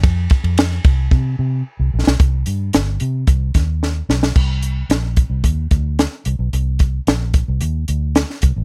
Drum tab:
CC |----------------|----------------|x---------------|----------------|
RD |x-xxx-x---------|----------------|----------------|----------------|
HH |----------------|x-x-x-x-x-x-----|--x-x-x-x-x-x-x-|x-x-x-x-x-x-x-x-|
SD |----o----------o|----o-----o-o-oo|----o-------o---|----o-------oo--|
BD |o-o---o-o-------|o-------o-o-----|o-----o-o-o-----|--o---o-------o-|